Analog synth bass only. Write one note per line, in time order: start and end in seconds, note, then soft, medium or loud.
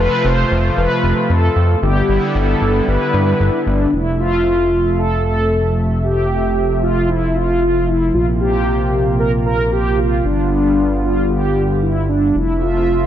0.25 0.44 F1 loud
0.51 0.71 F1 medium
0.77 0.87 F1 medium
1.03 1.13 F1 medium
1.30 1.50 F2 medium
1.56 1.76 F2 medium
1.82 2.02 G1 loud
2.09 2.19 G1 medium
2.35 2.55 G1 loud
2.62 2.81 G1 medium
2.88 2.98 G1 medium
3.14 3.34 G2 loud
3.40 3.50 G1 loud
3.67 3.86 G1 medium
3.93 8.11 F1 medium
8.14 10.22 A#1 medium
10.24 12.33 G1 medium
12.35 13.07 F1 medium